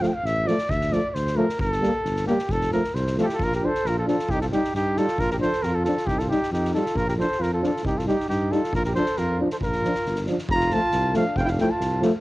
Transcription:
0.01 F3 A3 F5, snare
0.07 G5
0.15 F5
0.23 A1 E5, snare
0.45 F3 A3 D5, snare
0.58 snare
0.69 D2 E5, kick
0.81 snare
0.91 F3 A3 D5, snare
1.10 D5
1.14 D2 C5, snare
1.27 snare
1.36 F3 A3 A#4
1.49 snare
1.59 G1 A4, kick
1.72 snare
1.81 G3 A#3, snare
2.04 G1, snare
2.16 snare
2.26 G3 A#3 G4, snare
2.38 snare
2.49 F1 A4, kick
2.61 snare
2.72 F3 A3 A#4, snare
2.84 snare
2.94 C2 C5, snare
3.06 snare
3.17 F3 A3, snare
3.22 E4 F4 G4 A4
3.29 snare
3.34 F4 A4
3.39 A#1, kick
3.44 F4 A#4
3.52 G4 A#4, snare
3.61 F3 D4 C5
3.67 A4
3.75 snare
3.84 A#1 A#4, snare
3.89 F4
3.98 F4 A4
4.07 F3 D4 F4 A4, snare
4.19 snare
4.29 C2 D#4 G4, kick
4.41 F4 A4, snare
4.52 G3 D#4 G4, snare
4.64 snare
4.74 G2 D#4 G4, snare
4.96 G3 D#4 F4 A4, snare
5.07 snare
5.18 A#1 F4 A#4, kick
5.30 G4 A#4, snare
5.40 F3 D4 A4 C5, snare
5.52 snare
5.63 F2 F4 A#4, snare
5.75 F4 A4
5.84 F3 D4 A4, snare
5.89 F4
5.97 snare
6.07 C2 D#4 G4, kick
6.19 F4 A4, snare
6.29 G3 D#4 G4, snare
6.42 snare
6.51 F2 D#4 G4, snare
6.65 snare
6.72 G3 D#4 F4 A4, snare
6.86 snare
6.95 A#1 F4 A#4, kick
7.08 G4 A#4, snare
7.17 F3 D4 A4 C5, snare
7.32 snare
7.39 F2 F4 A#4, snare
7.53 F4 A4
7.61 F3 D4 F4, snare
7.66 A4
7.76 snare
7.83 C2 D#4 G4, kick
7.98 F4 A4, snare
8.07 G3 D#4 G4, snare
8.20 snare
8.29 G2 D#4 G4, snare
8.51 G3 D#4 F4 A4, snare
8.63 snare
8.72 A#1 F4 A#4, kick
8.84 G4 A#4, snare
8.95 F3 D4 A4 C5, snare
9.05 snare
9.16 F2 F4 A#4, snare
9.39 F3 D4
9.50 A4 C5, snare
9.61 A#1 F4 A#4, kick
9.72 snare
9.84 F3 D4, snare
9.94 snare
10.05 G1, snare
10.15 snare
10.26 F3 D4, snare
10.38 snare
10.49 F1 F4 A#5, kick
10.60 snare
10.70 F3 A3 A5, snare
10.75 F4
10.91 C2, snare
11.14 F3 A3 D4 F5, snare
11.36 F1 C4 F5 G5, kick
11.42 D4 E4 G5
11.47 F5, snare
11.51 D4
11.58 F3 A3 E4 G5, snare
11.70 F4 A5
11.80 C2, snare
12.02 F3 A3, snare

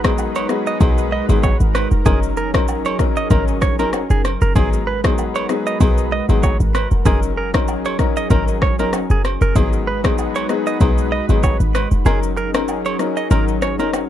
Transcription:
Already playing: G#1 G#3 D#4 F#4 A#4 B4
0.04 F#3 B3 D#4 G#4, kick, cross-stick, high agogo, shaker
0.18 low woodblock, shaker
0.35 C#5, high agogo, shaker
0.49 F#3 B3 D#4 G#4, cross-stick, shaker
0.67 D#5, shaker
0.80 B1 F#3 B3 D#4 G#4, kick, high agogo, shaker
0.98 shaker
1.12 D#5
1.29 G#1 F#3 B3 D#4 G#4, high agogo, shaker
1.43 C#5, kick, low woodblock, shaker
1.60 G#1, shaker
1.75 B4, cross-stick, high agogo, shaker
1.91 F1, shaker
2.05 F#1 F#3 C#4 D#4 G#4 A#4, kick, high agogo, shaker
2.23 shaker
2.37 A#4, shaker
2.54 F#3 C#4 D#4 A#4, kick, cross-stick, high agogo, shaker
2.68 low woodblock, shaker
2.85 C#5, high agogo, shaker
2.99 F#3 C#4 D#4 A#4, kick, cross-stick, shaker
3.17 D#5, shaker
3.30 G#1 F#3 C#4 D#4 A#4, kick, high agogo, shaker
3.48 shaker
3.61 C#5, kick, cross-stick, shaker
3.79 F#1 F#3 C#4 D#4 A#4, high agogo, shaker
3.93 cross-stick, low woodblock, shaker
4.10 F#1 G#4, shaker
4.25 cross-stick, high agogo, shaker
4.41 F#1 A#4, shaker
4.55 G#1 F#3 G#3 B3 D#4 F#4 G#4 B4, kick, high agogo, shaker
4.73 shaker
4.87 B4
5.04 F#3 B3 D#4 G#4, kick, cross-stick, high agogo, shaker
5.18 low woodblock, shaker
5.35 C#5, high agogo, shaker
5.49 F#3 B3 D#4 G#4, cross-stick, shaker
5.67 D#5, shaker
5.80 B1 F#3 B3 D#4 G#4, kick, high agogo, shaker
5.98 shaker
6.12 D#5
6.29 G#1 F#3 B3 D#4 G#4, high agogo, shaker
6.43 C#5, kick, low woodblock, shaker
6.60 G#1, shaker
6.75 B4, cross-stick, high agogo, shaker
6.91 F1, shaker
7.05 F#1 F#3 C#4 D#4 G#4 A#4, kick, high agogo, shaker
7.23 shaker
7.37 A#4
7.54 F#3 C#4 D#4 A#4, kick, cross-stick, high agogo, shaker
7.68 low woodblock, shaker
7.85 C#5, high agogo, shaker
7.99 F#3 C#4 D#4 A#4, kick, cross-stick, shaker
8.17 D#5, shaker
8.30 G#1 F#3 C#4 D#4 A#4, kick, high agogo, shaker
8.48 shaker
8.62 C#5, kick, cross-stick
8.79 F#1 F#3 C#4 D#4 A#4, high agogo, shaker
8.93 cross-stick, low woodblock, shaker
9.10 F#1 G#4, shaker
9.25 cross-stick, high agogo, shaker
9.41 F#1 A#4, shaker
9.55 G#1 F#3 G#3 B3 D#4 F#4 G#4 B4, kick, high agogo, shaker
9.73 shaker
9.87 B4
10.04 F#3 B3 D#4 G#4, kick, cross-stick, high agogo, shaker
10.18 low woodblock, shaker
10.35 C#5, high agogo, shaker
10.49 F#3 B3 D#4 G#4, cross-stick, shaker
10.67 D#5, shaker
10.80 B1 F#3 B3 D#4 G#4, kick, high agogo, shaker
10.98 shaker
11.12 D#5
11.29 G#1 F#3 B3 D#4 G#4, high agogo, shaker
11.43 C#5, kick, low woodblock, shaker
11.60 G#1, shaker
11.75 B4, cross-stick, high agogo, shaker
11.91 F1, shaker
12.05 F#1 F#3 C#4 D#4 G#4 A#4, high agogo, shaker
12.23 shaker
12.37 A#4, shaker
12.54 F#3 C#4 D#4 A#4, cross-stick, high agogo, shaker
12.68 low woodblock, shaker
12.85 C#5, high agogo, shaker
12.99 F#3 C#4 D#4 A#4, cross-stick, shaker
13.17 D#5, shaker
13.30 G#1 F#3 C#4 D#4 A#4, high agogo, shaker
13.48 shaker
13.62 C#5, cross-stick, shaker
13.79 F#1 F#3 C#4 D#4 A#4, high agogo, shaker
13.93 cross-stick, low woodblock, shaker

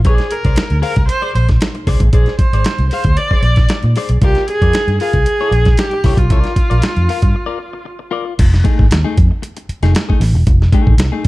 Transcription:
0.05 A#1 G#4 C5 D5, kick, closed hi-hat
0.18 snare, closed hi-hat
0.31 A#4, muted clean electric guitar stroke, closed hi-hat
0.45 C2 G#4 C5 D5, kick, closed hi-hat
0.56 muted fingered electric bass stroke, muted clean electric guitar stroke, snare, closed hi-hat
0.70 D2, closed hi-hat
0.82 G#4 A#4 C5 F5, open hi-hat
0.96 C2, muted clean electric guitar stroke, kick, closed hi-hat
1.08 C5, muted clean electric guitar stroke, closed hi-hat
1.22 G#4 C5 D5
1.35 A#1 C5, muted clean electric guitar stroke, closed hi-hat
1.49 muted clean electric guitar stroke, kick, snare, closed hi-hat
1.61 muted clean electric guitar stroke, snare, closed hi-hat
1.75 muted clean electric guitar stroke, closed hi-hat
1.87 C2 G#4 C5 D5, kick, snare, open hi-hat
2.00 A1, muted clean electric guitar stroke, kick, closed hi-hat
2.13 A#1 G#4 C5 D5, kick, closed hi-hat
2.26 snare, closed hi-hat
2.39 C5, muted clean electric guitar stroke, kick, closed hi-hat
2.53 G#1 G#4 C5 D5, closed hi-hat
2.64 snare, closed hi-hat
2.79 C2, closed hi-hat
2.90 G#4 C5 F5, open hi-hat
3.04 D2, muted clean electric guitar stroke, kick, closed hi-hat
3.17 D5, muted clean electric guitar stroke, closed hi-hat
3.31 G#4 C5 D5, kick
3.42 A#1 D5, muted clean electric guitar stroke, closed hi-hat
3.56 muted clean electric guitar stroke, kick, snare, closed hi-hat
3.69 muted clean electric guitar stroke, snare, closed hi-hat
3.83 A#2, muted clean electric guitar stroke, closed hi-hat
3.96 G#4 C5 D5, snare, open hi-hat
4.09 B1, muted clean electric guitar stroke, closed hi-hat
4.22 C2 F4 G4 A#4 D5, kick, closed hi-hat
4.35 snare, closed hi-hat
4.48 G#4, muted clean electric guitar stroke, closed hi-hat
4.62 F2 F4 A#4 D5, kick, closed hi-hat
4.73 muted fingered electric bass stroke, snare, closed hi-hat
4.87 G2, closed hi-hat
5.00 F4 G#4 A#4 F5, open hi-hat
5.13 C2, muted clean electric guitar stroke, kick, closed hi-hat
5.26 muted clean electric guitar stroke, closed hi-hat
5.41 F4 A#4 D5
5.51 A#1, muted clean electric guitar stroke, closed hi-hat
5.65 muted clean electric guitar stroke, kick, snare, closed hi-hat
5.77 G4, muted clean electric guitar stroke, snare, closed hi-hat
5.91 muted clean electric guitar stroke, closed hi-hat
6.04 C2 F4 A#4 D5, kick, snare, open hi-hat
6.17 B1 F4, muted clean electric guitar stroke, kick, closed hi-hat
6.30 C2 F4 A#4 D5, kick, closed hi-hat
6.44 snare, closed hi-hat
6.56 muted clean electric guitar stroke, kick, closed hi-hat
6.70 A#1 F4 A#4 D5, closed hi-hat
6.82 snare, closed hi-hat
6.96 F2, closed hi-hat
7.09 F4 A#4 F5, open hi-hat
7.22 G2, muted clean electric guitar stroke, kick, closed hi-hat
7.35 muted clean electric guitar stroke
7.46 F4 A#4 D5
7.59 muted clean electric guitar stroke
7.73 muted clean electric guitar stroke
7.85 muted clean electric guitar stroke
7.99 muted clean electric guitar stroke
8.11 F4 A#4 D5
8.26 muted clean electric guitar stroke
8.39 F1, kick, closed hi-hat, crash
8.54 snare
8.64 A3 D#4 G#4, kick, closed hi-hat
8.79 G#1, kick
8.91 D#2, muted clean electric guitar stroke, snare, closed hi-hat
9.04 A3 D#4 G#4
9.17 F2, muted clean electric guitar stroke, kick, closed hi-hat
9.31 muted clean electric guitar stroke
9.42 muted clean electric guitar stroke, closed hi-hat
9.57 muted clean electric guitar stroke, closed hi-hat
9.69 muted fingered electric bass stroke, closed hi-hat
9.82 F1 A3 D#4 G#4, snare, closed hi-hat
9.95 muted clean electric guitar stroke, snare, closed hi-hat
10.09 A3 D#4 G#4, kick
10.20 A1, muted clean electric guitar stroke, snare, open hi-hat
10.34 E1, muted clean electric guitar stroke
10.47 F1, kick, closed hi-hat
10.62 snare
10.72 A3 D#4 G#4, kick, closed hi-hat
10.87 A1, kick
10.97 C2, muted clean electric guitar stroke, snare, closed hi-hat
11.12 A3 D#4 G#4
11.25 muted clean electric guitar stroke, closed hi-hat

